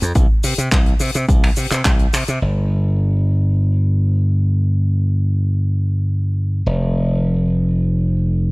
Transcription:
0.01 F2, closed hi-hat, shaker
0.15 C2, kick, closed hi-hat, shaker
0.43 C3, open hi-hat, shaker
0.58 C3, closed hi-hat, shaker
0.72 C2, kick, clap, closed hi-hat, shaker
0.86 closed hi-hat
1.00 C3, open hi-hat, shaker
1.14 C3, closed hi-hat, shaker
1.29 C2, kick, closed hi-hat, shaker
1.43 finger snap, open hi-hat
1.56 C3, open hi-hat, shaker
1.71 C3, clap, closed hi-hat, shaker
1.85 C2, kick, clap, closed hi-hat, shaker
1.99 closed hi-hat
2.13 C3, finger snap, open hi-hat, shaker
2.28 C3, closed hi-hat, shaker
2.42 G1
6.66 F1

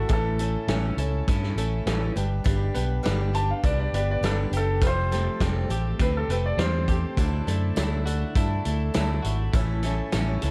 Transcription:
Already playing: F#4 A4
0.09 A1 A2 E3 A3 C#4 E4 G#4 A4, kick, closed hi-hat
0.13 A4
0.39 A3 C#4 E4 A4, closed hi-hat
0.68 A1 A2 E3 A3 C#4 E4 A4, snare, closed hi-hat
0.97 C#2 A3 C#4 E4 A4, closed hi-hat
1.27 G2 A3 C#4 E4 A4, kick, closed hi-hat
1.43 snare
1.56 A1 A3 C#4 E4 A4, closed hi-hat
1.86 A1 A2 E3 A3 C#4 E4 A4, snare, closed hi-hat
2.16 G1 G2 D4 G4 B4, closed hi-hat
2.44 G1 G2 G3 D4 G4 B4, kick, closed hi-hat
2.75 B1 B3 D4 G4 B4, closed hi-hat
3.03 G1 G3 D4 G4 B4, snare, closed hi-hat
3.33 D4 G4 B4 A5, closed hi-hat
3.51 F5
3.63 C2 G3 D4 G4 B4 D5, kick, closed hi-hat
3.80 D5
3.92 G1 B3 G4 B4 D5, closed hi-hat
3.96 D4
4.11 D5
4.21 G1 G3 D4 G4 B4, snare, closed hi-hat
4.25 A4
4.51 F#1 D4 G4 B4, closed hi-hat
4.57 A4
4.81 F1 F3 G3 C4 G4 A4 B4, kick, closed hi-hat
4.87 C5
5.11 A3 C4 G4 A4, snare, closed hi-hat
5.40 F1 F3 G3 C4 G4 A4, kick, snare, closed hi-hat
5.69 A1 C4 G4 A4, closed hi-hat
5.99 D2 G3 C4 G4 A4 B4, kick, closed hi-hat
6.17 A4
6.28 F1 A3 G4 A4 B4, closed hi-hat
6.33 C4
6.46 D5
6.57 E2 F3 G3 C4 G4 A4 C5, snare, closed hi-hat
6.88 C4 G4 A4, kick, closed hi-hat
7.17 D2 D3 F#3 A3 D4 E4 A4, kick, closed hi-hat
7.47 F#2 A3 D4 E4 A4, closed hi-hat
7.76 D2 D3 F#3 A3 D4 E4 A4, snare, closed hi-hat, tambourine
8.06 A3 D4 E4 F#4 A4, closed hi-hat
8.35 G2 A3 D4 E4 A4, kick, closed hi-hat
8.65 D2 A3 D4 E4 A4, closed hi-hat
8.94 D2 D3 F#3 A3 D4 E4 A4, snare, closed hi-hat, tambourine
9.22 G#1 E4 F#4 A4, closed hi-hat
9.26 A3 D4
9.53 A1 A2 E3 A3 C#4 E4 A4, kick, closed hi-hat
9.83 A3 C#4 E4 A4, snare, closed hi-hat
10.12 A1 A2 E3 A3 C#4 E4 A4, snare, closed hi-hat, tambourine
10.42 C#2 A3 C#4 E4 A4, closed hi-hat

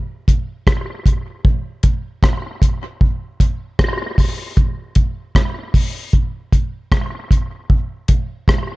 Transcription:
0.28 kick, closed hi-hat
0.67 kick, cross-stick
1.06 kick, closed hi-hat
1.45 kick
1.83 kick, closed hi-hat
2.23 kick, cross-stick
2.62 kick, closed hi-hat
3.01 kick
3.40 kick, closed hi-hat
3.79 kick, cross-stick
4.18 kick, open hi-hat
4.57 kick, hi-hat pedal
4.95 kick, closed hi-hat
5.35 kick, cross-stick
5.74 kick, open hi-hat
6.13 kick, hi-hat pedal
6.53 kick, closed hi-hat
6.92 kick, cross-stick
7.31 kick, closed hi-hat
7.70 kick
8.08 kick, closed hi-hat
8.48 kick, cross-stick

